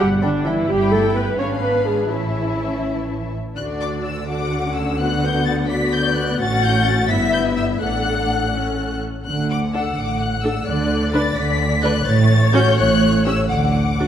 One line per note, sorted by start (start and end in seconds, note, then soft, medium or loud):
0.00 0.61 G1 medium
0.00 0.21 G3 medium
0.21 0.45 D3 medium
0.21 0.45 D4 medium
0.21 0.30 D4 medium
0.21 0.30 G5 medium
0.21 0.30 B5 medium
0.44 0.69 E3 medium
0.44 0.53 D4 medium
0.44 0.69 E4 loud
0.44 0.54 G5 medium
0.44 0.52 B5 medium
0.68 1.35 G1 medium
0.68 0.92 G3 loud
0.68 1.36 E4 medium
0.68 0.92 G4 loud
0.68 1.36 G5 medium
0.68 1.35 B5 medium
0.92 1.16 A3 medium
0.92 1.16 A4 loud
1.16 1.39 B3 medium
1.16 1.39 B4 medium
1.38 2.12 G#1 medium
1.38 1.63 C#4 medium
1.38 2.11 D4 medium
1.38 1.46 C#5 medium
1.38 2.12 F5 medium
1.38 2.10 B5 medium
1.62 1.87 B3 medium
1.62 1.86 B4 medium
1.86 2.11 G#3 medium
1.86 2.11 G#4 medium
2.10 3.34 A1 medium
2.10 3.30 E3 medium
2.10 3.37 C#4 medium
2.10 3.32 E4 medium
2.10 3.34 E5 medium
2.10 3.36 A5 medium
3.56 6.35 D2 medium
3.56 6.35 D3 medium
3.56 4.24 D4 medium
3.56 4.24 F#4 medium
3.56 4.24 D5 medium
3.56 3.65 F#6 medium
3.81 3.89 D6 loud
4.05 4.28 E6 medium
4.26 4.62 D4 medium
4.26 4.97 F#4 medium
4.26 4.97 F#5 medium
4.26 4.75 D6 medium
4.62 4.98 C#4 medium
4.75 4.99 E6 medium
4.99 5.67 B3 medium
4.99 5.67 F#4 medium
4.99 5.67 F#5 medium
4.99 5.23 F#6 loud
5.24 5.47 G6 loud
5.46 5.54 A6 loud
5.68 6.37 B3 medium
5.68 6.38 F#4 medium
5.68 6.39 D5 medium
5.68 5.92 B6 loud
5.93 6.16 G6 loud
6.17 6.40 F#6 loud
6.39 7.08 A1 loud
6.39 7.08 A2 loud
6.39 7.10 C#4 medium
6.39 7.08 F#4 medium
6.39 7.08 F#5 loud
6.39 6.63 A6 loud
6.64 6.87 G6 loud
6.87 7.10 A6 loud
7.09 7.81 G1 medium
7.09 7.81 G2 medium
7.09 7.81 B3 medium
7.09 7.80 E4 medium
7.09 7.81 E5 loud
7.09 7.33 B6 loud
7.33 7.41 G6 loud
7.57 7.65 E6 loud
7.80 9.02 A1 medium
7.80 9.03 A2 medium
7.80 8.52 D4 medium
7.80 8.52 A4 medium
7.80 8.88 F#5 medium
7.80 8.99 F#6 loud
8.54 9.05 C#4 medium
8.54 9.04 A4 medium
9.25 9.84 D2 medium
9.25 9.85 D3 medium
9.25 10.62 F#5 medium
9.25 9.47 F#6 medium
9.50 9.58 D6 loud
9.73 9.84 D4 medium
9.73 9.84 A4 medium
9.73 9.96 E6 medium
9.96 10.54 A1 medium
9.96 10.55 A2 medium
9.96 10.20 D6 medium
10.21 10.43 F#6 medium
10.42 10.54 D4 medium
10.42 10.54 A4 medium
10.42 10.66 E6 medium
10.66 11.23 D2 medium
10.66 11.24 D3 loud
10.66 12.03 D5 medium
10.66 11.12 F#6 loud
11.11 11.23 D4 medium
11.11 11.23 B4 medium
11.11 11.34 A6 loud
11.35 11.93 D2 medium
11.35 11.93 D3 medium
11.35 11.82 B6 loud
11.83 11.93 D4 medium
11.83 11.93 B4 medium
11.83 12.06 F#6 loud
12.05 12.64 A1 loud
12.05 12.64 A2 loud
12.05 13.46 C#5 loud
12.05 12.53 A6 loud
12.53 12.64 C#4 loud
12.53 12.64 F#4 loud
12.53 12.77 G6 loud
12.77 13.37 A1 loud
12.77 13.37 A2 loud
12.77 13.24 F#6 loud
13.25 13.36 C#4 medium
13.25 13.36 G4 medium
13.25 13.49 E6 loud
13.49 14.08 D2 medium
13.49 14.08 D3 medium
13.49 14.08 F#5 medium
13.49 14.08 D6 medium
13.99 14.08 D4 medium
13.99 14.08 F#4 medium